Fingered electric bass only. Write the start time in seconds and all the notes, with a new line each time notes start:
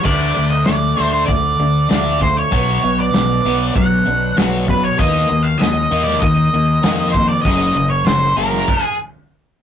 0.05 D2
0.38 D2
0.68 D2
0.99 D2
1.28 D2
1.60 D2
1.91 D2
2.52 B1
2.84 B1
3.15 B1
3.45 B1
3.76 B1
4.07 B1
4.37 B1
5.00 D#2
5.31 D#2
5.61 D#2
5.91 D#2
6.22 D#2
6.54 D#2
6.84 F2
7.45 F#1
7.76 F#1
8.06 F#1
8.37 F#1